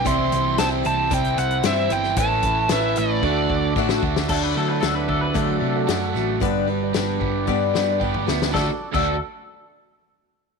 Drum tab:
CC |----------------|----------------|x---------------|----------------|
HH |x-x-x-x-xxxxx-x-|x-x-x-x---------|----x---x---x---|x---x-----------|
SD |----o-------o--o|----o--------o-o|----o-------o-o-|----o-----o---oo|
T2 |----------------|----------------|----------------|-------------o--|
BD |o-------o-------|o-o-----o-o-o-o-|o-----o-o-------|o-----o-o---o---|

CC |---x------------|
HH |----------------|
SD |o---------------|
T2 |----------------|
BD |o--o------------|